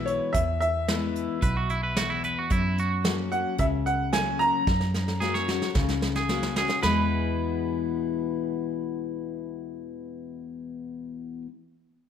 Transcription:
0.00 0.19 B1 medium
0.00 0.29 B2 medium
0.00 0.32 E3 medium
0.00 0.32 G#3 medium
0.00 0.32 B3 medium
0.00 0.33 E4 medium
0.06 0.32 C#5 medium
0.06 closed hi-hat medium
0.33 1.37 E2 medium
0.33 1.27 E2 medium
0.33 0.59 E5 medium
0.33 kick loud
0.33 closed hi-hat medium
0.60 2.19 E5 medium
0.60 closed hi-hat medium
0.88 1.40 E3 medium
0.88 1.40 G#3 medium
0.88 1.40 B3 medium
0.88 1.41 E4 medium
0.88 snare loud
0.88 closed hi-hat medium
1.15 closed hi-hat medium
1.42 2.35 B1 medium
1.42 2.45 B2 medium
1.42 1.56 B4 medium
1.42 kick loud
1.42 closed hi-hat medium
1.57 1.69 F#4 medium
1.70 1.83 E4 medium
1.70 closed hi-hat medium
1.83 1.96 B4 medium
1.97 2.48 E2 medium
1.97 2.10 F#4 medium
1.97 snare loud
1.97 closed hi-hat medium
2.10 2.23 E4 medium
2.24 2.37 B4 medium
2.24 closed hi-hat medium
2.39 2.51 F#4 medium
2.50 3.53 F#2 medium
2.50 3.43 F#2 medium
2.50 2.77 E4 medium
2.50 kick loud
2.50 closed hi-hat medium
2.78 3.05 F#4 medium
2.78 closed hi-hat medium
3.04 3.56 F#3 medium
3.04 3.56 A#3 medium
3.04 3.57 C#4 medium
3.04 3.57 F#4 medium
3.04 snare loud
3.04 closed hi-hat medium
3.32 3.57 F#5 medium
3.32 closed hi-hat medium
3.58 4.51 C#2 medium
3.58 4.61 C#3 medium
3.58 3.65 E5 medium
3.58 kick loud
3.58 closed hi-hat medium
3.86 4.11 F#5 medium
3.86 closed hi-hat medium
4.13 4.64 F#3 medium
4.13 4.65 A#3 medium
4.13 4.65 C#4 medium
4.13 4.65 F#4 medium
4.13 4.41 G#5 loud
4.13 snare loud
4.13 closed hi-hat medium
4.39 6.25 A#5 loud
4.39 closed hi-hat medium
4.67 5.60 F#2 medium
4.67 5.70 F#2 medium
4.67 kick loud
4.67 snare medium
4.81 snare medium
4.94 snare medium
5.08 snare medium
5.20 5.47 F#3 medium
5.20 5.47 A#3 medium
5.20 5.47 C#4 medium
5.20 5.47 F#4 medium
5.20 5.34 G#4 medium
5.20 snare medium
5.34 6.13 C#5 medium
5.34 snare medium
5.48 5.75 C#4 soft
5.48 5.74 F#4 medium
5.48 snare medium
5.62 snare medium
5.75 6.68 C#2 medium
5.75 6.78 C#3 medium
5.75 kick loud
5.75 snare medium
5.89 snare medium
6.02 snare medium
6.15 6.55 G#4 medium
6.15 snare medium
6.29 6.55 F#3 soft
6.29 6.55 A#3 medium
6.29 6.56 C#4 medium
6.29 6.55 F#4 medium
6.29 snare medium
6.43 snare medium
6.56 6.83 C#4 soft
6.56 6.82 F#4 soft
6.56 6.82 G#4 medium
6.56 snare medium
6.69 snare medium
6.83 11.46 E2 medium
6.83 11.42 E2 medium
6.83 11.46 B2 medium
6.83 11.47 E3 medium
6.83 11.48 G#3 medium
6.83 11.49 B3 medium
6.83 11.49 E4 medium
6.83 11.42 B4 medium
6.83 11.42 B5 medium
6.83 snare medium

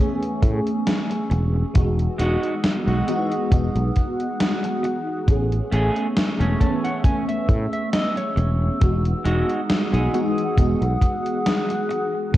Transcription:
0.00 1.74 E3 medium
0.00 0.22 A3 medium
0.00 1.72 A3 medium
0.00 1.77 A3 medium
0.00 1.75 B3 medium
0.00 0.23 C#4 medium
0.00 1.77 C#4 medium
0.00 0.23 G#4 medium
0.00 1.77 G#4 medium
0.00 1.72 G#5 medium
0.00 1.72 C#6 medium
0.00 1.71 E6 medium
0.23 closed hi-hat soft
0.43 0.59 A2 medium
0.43 kick loud
0.43 closed hi-hat medium
0.67 closed hi-hat soft
0.87 snare loud
0.87 closed hi-hat medium
1.10 muted clean electric guitar stroke medium
1.10 closed hi-hat soft
1.30 1.62 E1 loud
1.30 muted clean electric guitar stroke loud
1.30 closed hi-hat soft
1.54 muted clean electric guitar stroke soft
1.74 2.07 E1 loud
1.74 3.02 E3 medium
1.74 3.02 G#3 medium
1.74 3.03 B3 medium
1.74 3.03 D#4 medium
1.74 3.04 F#4 medium
1.74 5.25 G#4 medium
1.74 5.25 F#5 medium
1.74 5.25 D#6 medium
1.74 3.50 E6 medium
1.74 kick loud
1.74 closed hi-hat medium
1.99 closed hi-hat soft
2.18 2.36 E1 medium
2.18 2.53 G#3 loud
2.18 2.53 D#4 loud
2.18 2.54 F#4 loud
2.18 closed hi-hat medium
2.43 closed hi-hat soft
2.64 snare loud
2.64 closed hi-hat medium
2.86 3.01 B1 medium
2.86 3.75 G#3 medium
2.86 3.76 D#4 medium
2.86 3.76 F#4 medium
2.86 closed hi-hat soft
3.07 3.47 E3 medium
3.07 3.47 G#3 medium
3.07 3.47 B3 medium
3.07 3.47 D#4 medium
3.07 3.47 F#4 loud
3.07 closed hi-hat medium
3.32 closed hi-hat soft
3.50 3.68 E1 medium
3.50 5.23 E3 medium
3.50 5.23 G#3 medium
3.50 5.24 B3 medium
3.50 5.24 D#4 medium
3.50 5.24 F#4 medium
3.50 5.26 F#6 medium
3.50 kick loud
3.50 closed hi-hat medium
3.75 3.89 B1 medium
3.75 closed hi-hat soft
3.96 kick medium
3.96 closed hi-hat medium
4.20 closed hi-hat soft
4.40 snare loud
4.40 closed hi-hat loud
4.63 muted clean electric guitar stroke medium
4.63 closed hi-hat soft
4.83 muted clean electric guitar stroke loud
4.83 closed hi-hat soft
5.07 muted clean electric guitar stroke soft
5.27 5.59 A1 medium
5.27 6.55 E3 medium
5.27 6.55 A3 medium
5.27 8.78 A3 medium
5.27 6.56 B3 medium
5.27 6.56 C#4 medium
5.27 6.57 G#4 medium
5.27 8.78 C#6 medium
5.27 10.54 E6 medium
5.27 kick loud
5.27 closed hi-hat medium
5.52 closed hi-hat soft
5.71 5.89 A1 medium
5.71 6.06 A3 loud
5.71 6.06 C#4 loud
5.71 6.07 G#4 loud
5.71 closed hi-hat medium
5.96 closed hi-hat soft
6.17 snare loud
6.17 closed hi-hat loud
6.39 6.54 E1 medium
6.39 7.28 A3 medium
6.39 7.28 C#4 medium
6.39 7.29 G#4 medium
6.39 closed hi-hat soft
6.60 7.00 E3 medium
6.60 7.00 A3 medium
6.60 7.00 B3 medium
6.60 7.00 C#4 medium
6.60 6.83 A5 medium
6.60 kick medium
6.60 closed hi-hat medium
6.84 7.03 F#5 medium
6.84 closed hi-hat soft
7.03 8.76 E3 medium
7.03 8.76 A3 medium
7.03 8.76 B3 medium
7.03 8.77 C#4 medium
7.03 7.27 G#5 medium
7.03 kick loud
7.03 closed hi-hat medium
7.29 7.70 E5 medium
7.29 closed hi-hat soft
7.49 7.65 A2 loud
7.49 kick medium
7.49 closed hi-hat medium
7.73 7.92 E5 medium
7.73 closed hi-hat soft
7.93 8.15 D#5 medium
7.93 snare loud
7.93 closed hi-hat medium
8.16 8.77 C#5 medium
8.16 muted clean electric guitar stroke medium
8.16 closed hi-hat soft
8.36 8.68 E1 loud
8.36 muted clean electric guitar stroke loud
8.36 closed hi-hat soft
8.60 muted clean electric guitar stroke soft
8.80 9.13 E1 loud
8.80 10.08 E3 medium
8.80 10.09 G#3 medium
8.80 10.09 B3 medium
8.80 10.09 D#4 medium
8.80 10.10 F#4 medium
8.80 12.31 G#4 medium
8.80 12.31 F#5 medium
8.80 12.31 D#6 medium
8.80 kick loud
8.80 closed hi-hat medium
9.05 closed hi-hat soft
9.24 9.42 E1 medium
9.24 9.59 G#3 loud
9.24 9.59 D#4 loud
9.24 9.60 F#4 loud
9.24 closed hi-hat medium
9.49 closed hi-hat soft
9.70 snare loud
9.70 closed hi-hat medium
9.92 10.07 B1 medium
9.92 10.81 G#3 medium
9.92 10.82 D#4 medium
9.92 10.82 G#4 medium
9.92 closed hi-hat soft
10.13 10.52 E3 medium
10.13 10.53 G#3 medium
10.13 10.53 B3 medium
10.13 10.53 D#4 medium
10.13 10.53 F#4 loud
10.13 closed hi-hat medium
10.38 closed hi-hat soft
10.56 10.74 E1 loud
10.56 12.29 E3 medium
10.56 12.29 G#3 medium
10.56 12.29 B3 medium
10.56 12.30 D#4 medium
10.56 12.30 F#4 medium
10.56 12.33 F#6 medium
10.56 kick loud
10.56 closed hi-hat medium
10.82 10.95 B1 medium
10.82 closed hi-hat soft
11.01 kick medium
11.01 closed hi-hat medium
11.26 closed hi-hat soft
11.46 snare loud
11.46 closed hi-hat medium
11.69 muted clean electric guitar stroke medium
11.69 closed hi-hat soft
11.89 muted clean electric guitar stroke loud
11.89 closed hi-hat soft
12.13 muted clean electric guitar stroke soft
12.33 12.37 A1 loud
12.33 12.37 E3 medium
12.33 12.37 A3 medium
12.33 12.37 G#5 medium
12.33 12.37 C#6 medium
12.33 12.37 E6 medium
12.33 kick loud

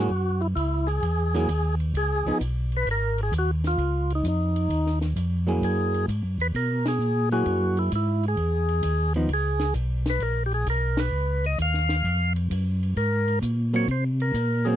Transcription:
0.00 0.42 F#4 medium
0.10 0.55 F#2 medium
0.41 0.48 E4 medium
0.41 ride soft
0.55 1.01 C#2 medium
0.55 0.88 E4 medium
0.55 kick soft
0.55 hi-hat pedal medium
0.55 ride medium
0.87 1.75 G#4 medium
0.87 ride soft
1.02 1.47 E2 medium
1.02 kick soft
1.02 ride medium
1.34 1.47 F#3 medium
1.34 1.48 A#3 medium
1.34 1.48 E4 medium
1.34 1.48 G#4 medium
1.34 snare soft
1.34 ride soft
1.49 1.93 D#2 medium
1.49 kick soft
1.49 hi-hat pedal medium
1.49 ride medium
1.80 ride soft
1.94 2.23 C#2 medium
1.94 2.38 G#4 loud
1.94 kick soft
1.94 ride medium
2.25 2.32 C#2 soft
2.25 2.39 F3 medium
2.25 2.40 B3 medium
2.25 2.40 D#4 medium
2.25 ride soft
2.40 2.85 B1 medium
2.40 kick soft
2.40 hi-hat pedal soft
2.40 ride medium
2.72 ride soft
2.77 2.89 B4 loud
2.86 3.31 G#1 medium
2.86 kick soft
2.86 ride medium
2.91 3.21 A#4 loud
3.18 ride soft
3.23 3.34 G#4 medium
3.32 3.76 D#2 medium
3.32 kick soft
3.32 hi-hat pedal medium
3.32 ride medium
3.38 3.51 F#4 medium
3.64 4.13 F4 medium
3.64 snare soft
3.64 ride soft
3.78 4.22 C#2 medium
3.78 kick soft
3.78 ride medium
4.10 ride soft
4.15 4.27 D#4 medium
4.23 4.68 F2 medium
4.23 kick soft
4.23 hi-hat pedal medium
4.23 ride medium
4.28 4.99 D#4 medium
4.56 ride soft
4.69 5.14 D#2 medium
4.69 kick soft
4.69 ride medium
4.86 snare soft
5.01 snare soft
5.01 ride soft
5.16 5.60 F2 medium
5.16 kick soft
5.16 hi-hat pedal medium
5.16 ride medium
5.47 6.04 F#3 medium
5.47 6.05 A#3 medium
5.47 6.05 E4 medium
5.47 6.05 G#4 medium
5.47 ride soft
5.61 6.06 F#2 medium
5.61 6.06 G#4 medium
5.61 kick soft
5.61 ride medium
5.94 ride soft
6.08 6.23 G#2 medium
6.08 kick soft
6.08 hi-hat pedal medium
6.08 ride medium
6.23 6.38 F#2 medium
6.38 6.52 E2 medium
6.38 6.48 B4 medium
6.38 ride soft
6.54 6.99 B2 medium
6.54 6.87 A#4 medium
6.54 kick soft
6.54 ride medium
6.86 7.29 G#4 loud
6.86 snare medium
6.86 ride medium
6.99 7.44 A#2 medium
6.99 hi-hat pedal soft
7.31 7.89 F#3 medium
7.31 7.89 A#3 medium
7.31 7.89 E4 medium
7.31 7.79 F#4 medium
7.31 7.89 G#4 medium
7.31 ride soft
7.45 7.90 F#2 medium
7.45 kick soft
7.45 ride medium
7.77 7.93 E4 medium
7.77 ride soft
7.92 8.36 G#2 medium
7.92 8.26 E4 medium
7.92 kick soft
7.92 hi-hat pedal soft
7.92 ride medium
8.23 ride soft
8.28 9.13 G#4 medium
8.37 8.82 E2 medium
8.37 kick soft
8.37 ride medium
8.69 ride soft
8.83 9.28 D#2 medium
8.83 kick soft
8.83 hi-hat pedal medium
8.83 ride medium
9.14 9.28 F3 medium
9.14 9.28 B3 medium
9.14 9.29 D#4 medium
9.14 ride soft
9.28 9.73 C#2 medium
9.28 kick soft
9.28 ride medium
9.34 9.74 G#4 loud
9.60 snare soft
9.60 ride soft
9.74 10.19 B1 medium
9.74 kick soft
9.74 hi-hat pedal medium
9.74 ride medium
10.06 10.23 B4 medium
10.06 snare medium
10.06 ride soft
10.20 10.65 A#1 medium
10.20 10.43 A#4 medium
10.20 kick soft
10.20 ride medium
10.46 10.53 G4 medium
10.51 10.68 G#4 medium
10.51 ride soft
10.66 11.11 B1 medium
10.66 11.00 A#4 medium
10.66 kick soft
10.66 hi-hat pedal medium
10.66 ride medium
10.97 11.46 B4 medium
10.97 snare medium
10.97 ride medium
11.12 11.56 C#2 medium
11.44 11.59 D#5 medium
11.44 ride soft
11.58 12.03 D#2 medium
11.58 12.33 F5 medium
11.58 kick soft
11.58 hi-hat pedal soft
11.58 ride medium
11.74 snare soft
11.89 snare soft
11.89 ride soft
12.04 12.48 F2 medium
12.04 kick soft
12.04 ride medium
12.36 ride soft
12.50 12.94 F#2 medium
12.50 kick soft
12.50 hi-hat pedal medium
12.50 ride medium
12.83 ride soft
12.96 13.40 G#2 medium
12.96 13.39 A#4 medium
12.96 kick soft
12.96 ride medium
13.28 ride soft
13.41 13.86 A#2 medium
13.41 kick soft
13.41 hi-hat pedal medium
13.41 ride medium
13.73 13.86 F#3 medium
13.73 13.86 A#3 medium
13.73 13.86 C4 medium
13.73 13.88 C#5 medium
13.73 ride soft
13.88 14.32 C3 medium
13.88 14.04 C5 medium
13.88 kick soft
13.88 ride medium
14.20 14.67 A#4 medium
14.20 ride soft
14.34 14.76 A#2 medium
14.34 kick soft
14.34 hi-hat pedal soft
14.34 ride medium
14.65 14.76 F#3 medium
14.65 14.76 A#3 medium
14.65 14.76 C4 medium
14.65 14.76 G#4 medium
14.65 ride soft

